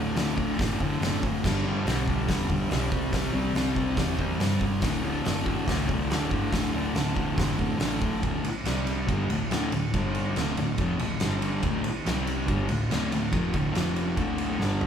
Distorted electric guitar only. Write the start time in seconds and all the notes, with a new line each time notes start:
Already playing: D2 A2 D3
0.16 D2 A2 D3
0.37 D2 A2 D3
0.60 D2 A2 D3
0.81 D2 A2 D3
1.03 D2 A2 D3
1.25 D2 A2 D3
1.45 G2 D3 G3
1.66 G2 D3 G3
1.86 G2 D3 G3
2.06 G2 D3 G3
2.28 G2 D3 G3
2.49 G2 D3 G3
2.69 G2 D3 G3
2.90 C3 G3 C4
3.13 C3 G3 C4
3.32 C3 G3 C4
3.55 C3 G3 C4
3.76 C3 G3 C4
3.96 C3 G3 C4
4.19 C3 G3 C4
4.39 C3 G3 C4
4.62 C3 G3 C4
4.82 D2 A2 D3
5.02 D2 A2 D3
5.23 D2 A2 D3
5.45 D2 A2 D3
5.66 D2 A2 D3
5.88 D2 A2 D3
6.09 D2 A2 D3
6.30 D2 A2 D3
6.52 D2 A2 D3
6.73 D2 A2 D3
6.94 D2 A2 D3
7.15 D2 A2 D3
7.35 D2 A2 D3
7.57 D2 A2 D3
7.77 D2 A2 D3
7.99 D2 A2 D3
8.22 D2 A2 D3
8.44 muted distorted electric guitar stroke
8.65 C3 G3 C4
9.07 G2 D3 G3
9.30 D2 A2
9.51 D2 A2 D3
9.72 D2 A2
9.94 G2 D3 G3
10.37 D2 A2 D3
10.58 D2 A2
10.80 F2 C3 F3
11.00 D2 A2
11.22 G2 D3 G3
11.63 D2 A2 D3
11.84 muted distorted electric guitar stroke
12.06 C3 G3 C4
12.47 G2 D3 G3
12.69 D2 A2
12.90 D2 A2 D3
13.13 D2 A2
13.32 F2 C3 F3
13.54 D2 A2 D3
13.74 F2 C3 F3
14.16 D2 A2 D3
14.59 G2 D3 G3